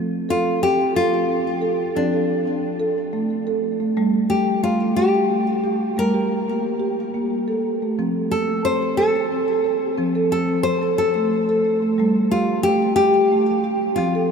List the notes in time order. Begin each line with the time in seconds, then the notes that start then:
Already playing: F3 C4
0.29 F4 A4
0.62 C4 G4
0.96 F4 A4
1.29 C4
1.62 A4
1.96 F3 C4 D4
2.13 A4
2.45 C4
2.80 A4
3.13 A3
3.47 A4
3.80 A3
3.97 G3 A3
4.30 G4
4.63 A3 F4
4.96 G4
5.31 A3
5.64 G4
5.97 G3 A3 A#4
6.14 G4
6.48 A#3
6.80 G4
7.14 A#3
7.48 A4
7.82 A3
7.99 F3 C4
8.31 A4
8.65 C4 C5
8.97 A4
9.32 C4
9.64 A4
9.98 F3 C4
10.15 A4
10.32 A4
10.48 C4
10.63 C5
10.82 A4
10.98 A4
11.15 A3
11.49 A4
11.82 A3
11.98 G3 A3
12.31 F4 G4
12.63 A3 G4
12.96 G4
13.32 A3
13.64 G4
13.96 F3 C4 F4
14.15 A4